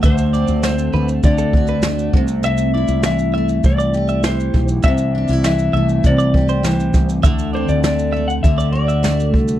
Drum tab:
SH |xxxxxx-xxx-xxx-x|xx-xxx-xxxxxxx-x|xx-xxx-xxx-xxxxx|xx-xxx-xxx-xxx-x|
SD |----o-------o---|----o-------o-o-|----o-------o-o-|----o-------o---|
BD |o-------o-o---o-|--------o-----o-|o-------o-o---o-|o-------o-----o-|